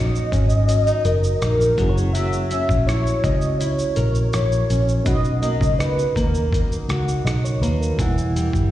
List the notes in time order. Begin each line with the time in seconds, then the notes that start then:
Already playing: A#1 F#3 A#3 C#4 D#4 F#4 D#5
0.15 shaker
0.32 G#1 C#4, kick, closed hi-hat, shaker
0.49 shaker
0.68 C#4, closed hi-hat, shaker
0.87 D#4, shaker
1.05 F#1 A#4, closed hi-hat, shaker
1.24 shaker
1.41 A#1 D#4 A#4, cross-stick, closed hi-hat, shaker
1.61 shaker
1.76 F#1 F#3 A#3 C#4 E4, kick, closed hi-hat, shaker
1.81 G#4
1.89 C#5
1.98 shaker
2.13 F#3 E5, closed hi-hat, shaker
2.33 shaker
2.49 C#4 E5, closed hi-hat, shaker
2.69 A#1, kick, shaker
2.87 E4 C#5, cross-stick, closed hi-hat, shaker
3.07 shaker
3.24 C#2 C#4 D#5, kick, closed hi-hat, shaker
3.41 shaker
3.58 E4 C#5, closed hi-hat, shaker
3.79 shaker
3.96 A#1 A#4, closed hi-hat, shaker
4.15 shaker
4.33 A#1 E4 C#5, cross-stick, closed hi-hat, shaker
4.52 shaker
4.70 A#1 C#4, closed hi-hat, shaker
4.89 shaker
5.04 B1 B2 B3 C#4 D#4 D#5, kick, closed hi-hat, shaker
5.08 F#4
5.24 shaker
5.41 A#3 D#5, closed hi-hat, shaker
5.61 C#2, kick, shaker
5.79 D#4 B4, cross-stick, closed hi-hat, shaker
5.99 shaker
6.14 D#2 A#3 A#4, kick, closed hi-hat, shaker
6.35 shaker
6.53 D#4, kick, closed hi-hat, shaker
6.72 shaker
6.88 C#2 F#4, cross-stick, closed hi-hat, shaker
7.08 shaker
7.25 B1 D#4 D#5, cross-stick, closed hi-hat, shaker
7.44 C#5, shaker
7.62 D#2 A#3 B4, closed hi-hat, shaker
7.81 A#4, shaker
7.97 E1 E3 G3 B3 E4, kick, closed hi-hat, shaker
8.02 F#5
8.18 shaker
8.36 G3, closed hi-hat, shaker
8.53 G1, kick, shaker